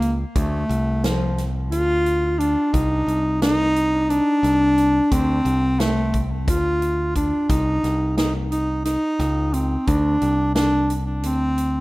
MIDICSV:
0, 0, Header, 1, 4, 480
1, 0, Start_track
1, 0, Tempo, 681044
1, 247, Time_signature, 7, 3, 24, 8
1, 8320, End_track
2, 0, Start_track
2, 0, Title_t, "Bass clarinet"
2, 0, Program_c, 0, 71
2, 0, Note_on_c, 0, 58, 106
2, 133, Note_off_c, 0, 58, 0
2, 253, Note_on_c, 0, 57, 101
2, 737, Note_on_c, 0, 53, 96
2, 748, Note_off_c, 0, 57, 0
2, 1022, Note_off_c, 0, 53, 0
2, 1208, Note_on_c, 0, 65, 115
2, 1682, Note_on_c, 0, 62, 97
2, 1693, Note_off_c, 0, 65, 0
2, 1924, Note_on_c, 0, 63, 107
2, 1934, Note_off_c, 0, 62, 0
2, 2406, Note_off_c, 0, 63, 0
2, 2410, Note_on_c, 0, 63, 115
2, 2888, Note_on_c, 0, 62, 109
2, 2899, Note_off_c, 0, 63, 0
2, 3611, Note_on_c, 0, 60, 105
2, 3622, Note_off_c, 0, 62, 0
2, 4086, Note_on_c, 0, 57, 102
2, 4097, Note_off_c, 0, 60, 0
2, 4377, Note_off_c, 0, 57, 0
2, 4571, Note_on_c, 0, 65, 99
2, 5021, Note_off_c, 0, 65, 0
2, 5048, Note_on_c, 0, 62, 91
2, 5280, Note_on_c, 0, 63, 108
2, 5290, Note_off_c, 0, 62, 0
2, 5756, Note_off_c, 0, 63, 0
2, 5760, Note_on_c, 0, 63, 95
2, 5870, Note_off_c, 0, 63, 0
2, 6000, Note_on_c, 0, 63, 93
2, 6226, Note_off_c, 0, 63, 0
2, 6239, Note_on_c, 0, 63, 105
2, 6719, Note_on_c, 0, 60, 89
2, 6729, Note_off_c, 0, 63, 0
2, 6962, Note_on_c, 0, 62, 108
2, 6973, Note_off_c, 0, 60, 0
2, 7431, Note_off_c, 0, 62, 0
2, 7435, Note_on_c, 0, 62, 105
2, 7710, Note_off_c, 0, 62, 0
2, 7917, Note_on_c, 0, 60, 100
2, 8320, Note_off_c, 0, 60, 0
2, 8320, End_track
3, 0, Start_track
3, 0, Title_t, "Picked electric bass"
3, 0, Program_c, 1, 34
3, 0, Note_on_c, 1, 37, 93
3, 164, Note_off_c, 1, 37, 0
3, 251, Note_on_c, 1, 38, 96
3, 446, Note_off_c, 1, 38, 0
3, 489, Note_on_c, 1, 36, 96
3, 1209, Note_off_c, 1, 36, 0
3, 1209, Note_on_c, 1, 38, 94
3, 1799, Note_off_c, 1, 38, 0
3, 1929, Note_on_c, 1, 36, 98
3, 2125, Note_off_c, 1, 36, 0
3, 2161, Note_on_c, 1, 36, 75
3, 2952, Note_off_c, 1, 36, 0
3, 3123, Note_on_c, 1, 36, 92
3, 3519, Note_off_c, 1, 36, 0
3, 3605, Note_on_c, 1, 38, 92
3, 3803, Note_off_c, 1, 38, 0
3, 3842, Note_on_c, 1, 36, 91
3, 4563, Note_off_c, 1, 36, 0
3, 4563, Note_on_c, 1, 38, 91
3, 5155, Note_off_c, 1, 38, 0
3, 5282, Note_on_c, 1, 36, 91
3, 5481, Note_off_c, 1, 36, 0
3, 5522, Note_on_c, 1, 36, 76
3, 6311, Note_off_c, 1, 36, 0
3, 6481, Note_on_c, 1, 37, 106
3, 6877, Note_off_c, 1, 37, 0
3, 6960, Note_on_c, 1, 38, 101
3, 7159, Note_off_c, 1, 38, 0
3, 7203, Note_on_c, 1, 36, 91
3, 7926, Note_off_c, 1, 36, 0
3, 7926, Note_on_c, 1, 38, 79
3, 8320, Note_off_c, 1, 38, 0
3, 8320, End_track
4, 0, Start_track
4, 0, Title_t, "Drums"
4, 14, Note_on_c, 9, 42, 59
4, 85, Note_off_c, 9, 42, 0
4, 251, Note_on_c, 9, 42, 74
4, 252, Note_on_c, 9, 36, 101
4, 321, Note_off_c, 9, 42, 0
4, 322, Note_off_c, 9, 36, 0
4, 495, Note_on_c, 9, 42, 61
4, 565, Note_off_c, 9, 42, 0
4, 733, Note_on_c, 9, 38, 96
4, 733, Note_on_c, 9, 42, 89
4, 803, Note_off_c, 9, 38, 0
4, 803, Note_off_c, 9, 42, 0
4, 974, Note_on_c, 9, 38, 33
4, 974, Note_on_c, 9, 42, 68
4, 1044, Note_off_c, 9, 38, 0
4, 1044, Note_off_c, 9, 42, 0
4, 1212, Note_on_c, 9, 42, 78
4, 1282, Note_off_c, 9, 42, 0
4, 1452, Note_on_c, 9, 42, 60
4, 1523, Note_off_c, 9, 42, 0
4, 1693, Note_on_c, 9, 42, 64
4, 1764, Note_off_c, 9, 42, 0
4, 1930, Note_on_c, 9, 42, 74
4, 1931, Note_on_c, 9, 36, 96
4, 2001, Note_off_c, 9, 36, 0
4, 2001, Note_off_c, 9, 42, 0
4, 2172, Note_on_c, 9, 42, 56
4, 2243, Note_off_c, 9, 42, 0
4, 2410, Note_on_c, 9, 38, 109
4, 2410, Note_on_c, 9, 42, 84
4, 2481, Note_off_c, 9, 38, 0
4, 2481, Note_off_c, 9, 42, 0
4, 2652, Note_on_c, 9, 42, 58
4, 2722, Note_off_c, 9, 42, 0
4, 2890, Note_on_c, 9, 42, 69
4, 2961, Note_off_c, 9, 42, 0
4, 3130, Note_on_c, 9, 38, 34
4, 3130, Note_on_c, 9, 42, 62
4, 3201, Note_off_c, 9, 38, 0
4, 3201, Note_off_c, 9, 42, 0
4, 3366, Note_on_c, 9, 42, 62
4, 3437, Note_off_c, 9, 42, 0
4, 3605, Note_on_c, 9, 42, 82
4, 3606, Note_on_c, 9, 36, 89
4, 3675, Note_off_c, 9, 42, 0
4, 3677, Note_off_c, 9, 36, 0
4, 3844, Note_on_c, 9, 42, 63
4, 3915, Note_off_c, 9, 42, 0
4, 4086, Note_on_c, 9, 38, 110
4, 4086, Note_on_c, 9, 42, 75
4, 4157, Note_off_c, 9, 38, 0
4, 4157, Note_off_c, 9, 42, 0
4, 4325, Note_on_c, 9, 42, 67
4, 4326, Note_on_c, 9, 36, 82
4, 4395, Note_off_c, 9, 42, 0
4, 4397, Note_off_c, 9, 36, 0
4, 4565, Note_on_c, 9, 36, 110
4, 4566, Note_on_c, 9, 42, 88
4, 4636, Note_off_c, 9, 36, 0
4, 4636, Note_off_c, 9, 42, 0
4, 4806, Note_on_c, 9, 42, 61
4, 4877, Note_off_c, 9, 42, 0
4, 5043, Note_on_c, 9, 42, 66
4, 5044, Note_on_c, 9, 36, 74
4, 5113, Note_off_c, 9, 42, 0
4, 5114, Note_off_c, 9, 36, 0
4, 5282, Note_on_c, 9, 42, 84
4, 5283, Note_on_c, 9, 36, 103
4, 5353, Note_off_c, 9, 36, 0
4, 5353, Note_off_c, 9, 42, 0
4, 5525, Note_on_c, 9, 38, 36
4, 5525, Note_on_c, 9, 42, 58
4, 5595, Note_off_c, 9, 38, 0
4, 5595, Note_off_c, 9, 42, 0
4, 5762, Note_on_c, 9, 38, 100
4, 5762, Note_on_c, 9, 42, 73
4, 5832, Note_off_c, 9, 38, 0
4, 5832, Note_off_c, 9, 42, 0
4, 6003, Note_on_c, 9, 42, 61
4, 6073, Note_off_c, 9, 42, 0
4, 6240, Note_on_c, 9, 38, 37
4, 6240, Note_on_c, 9, 42, 78
4, 6310, Note_off_c, 9, 38, 0
4, 6310, Note_off_c, 9, 42, 0
4, 6481, Note_on_c, 9, 38, 33
4, 6481, Note_on_c, 9, 42, 57
4, 6552, Note_off_c, 9, 38, 0
4, 6552, Note_off_c, 9, 42, 0
4, 6720, Note_on_c, 9, 42, 61
4, 6791, Note_off_c, 9, 42, 0
4, 6958, Note_on_c, 9, 42, 76
4, 6961, Note_on_c, 9, 36, 99
4, 7028, Note_off_c, 9, 42, 0
4, 7032, Note_off_c, 9, 36, 0
4, 7199, Note_on_c, 9, 42, 57
4, 7270, Note_off_c, 9, 42, 0
4, 7439, Note_on_c, 9, 38, 115
4, 7439, Note_on_c, 9, 42, 74
4, 7510, Note_off_c, 9, 38, 0
4, 7510, Note_off_c, 9, 42, 0
4, 7681, Note_on_c, 9, 42, 69
4, 7752, Note_off_c, 9, 42, 0
4, 7918, Note_on_c, 9, 42, 78
4, 7988, Note_off_c, 9, 42, 0
4, 8159, Note_on_c, 9, 42, 61
4, 8230, Note_off_c, 9, 42, 0
4, 8320, End_track
0, 0, End_of_file